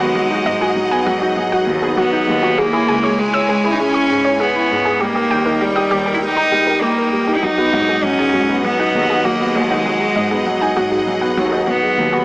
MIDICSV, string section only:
0, 0, Header, 1, 2, 480
1, 0, Start_track
1, 0, Key_signature, 5, "minor"
1, 0, Tempo, 606061
1, 124, Time_signature, 4, 2, 24, 8
1, 9701, End_track
2, 0, Start_track
2, 0, Title_t, "String section"
2, 0, Program_c, 0, 48
2, 0, Note_on_c, 0, 63, 79
2, 0, Note_on_c, 0, 68, 69
2, 0, Note_on_c, 0, 75, 74
2, 0, Note_on_c, 0, 78, 84
2, 2014, Note_off_c, 0, 63, 0
2, 2014, Note_off_c, 0, 75, 0
2, 2014, Note_off_c, 0, 78, 0
2, 2039, Note_on_c, 0, 64, 79
2, 2039, Note_on_c, 0, 73, 72
2, 2040, Note_on_c, 0, 80, 87
2, 3934, Note_off_c, 0, 68, 0
2, 3943, Note_off_c, 0, 64, 0
2, 3943, Note_off_c, 0, 73, 0
2, 3943, Note_off_c, 0, 80, 0
2, 3962, Note_on_c, 0, 67, 73
2, 3962, Note_on_c, 0, 79, 83
2, 3963, Note_on_c, 0, 63, 79
2, 3963, Note_on_c, 0, 70, 73
2, 5864, Note_off_c, 0, 67, 0
2, 5864, Note_off_c, 0, 79, 0
2, 5865, Note_off_c, 0, 70, 0
2, 5888, Note_on_c, 0, 75, 71
2, 5888, Note_on_c, 0, 78, 89
2, 5889, Note_on_c, 0, 68, 72
2, 9692, Note_off_c, 0, 63, 0
2, 9694, Note_off_c, 0, 75, 0
2, 9695, Note_off_c, 0, 78, 0
2, 9701, Note_off_c, 0, 68, 0
2, 9701, End_track
0, 0, End_of_file